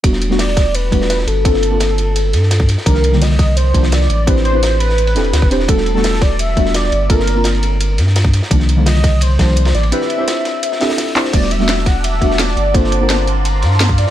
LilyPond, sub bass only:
\new Staff \with { instrumentName = "Sub bass" } { \clef bass \time 4/4 \key e \minor \tempo 4 = 170 e,,2~ e,,8 e,,4 g,,8~ | g,,2~ g,,8 g,4~ g,16 r16 | c,2~ c,8 c,4 a,,8~ | a,,2~ a,,8 e,,8 d,16 e,,8. |
e,,2~ e,,8 e,,4 g,,8~ | g,,2~ g,,8 g,4~ g,16 r16 | c,2~ c,8 c,4 a,,8 | r1 |
e,,2~ e,,8 e,,4 g,,8~ | g,,2~ g,,8 g,4~ g,16 r16 | }